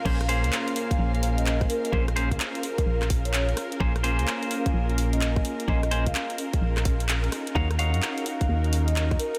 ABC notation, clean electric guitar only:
X:1
M:4/4
L:1/8
Q:"Swing 16ths" 1/4=128
K:Bbm
V:1 name="Clean electric guitar"
[B,DAc] [B,DAc]6- [B,DAc] | [B,DAc] [B,DAc] z6 | [B,DAc] [B,DAc]6- [B,DAc] | [B,DAc] [B,DAc] z6 |
[EGdf] [EGdf]6- [EGdf] |]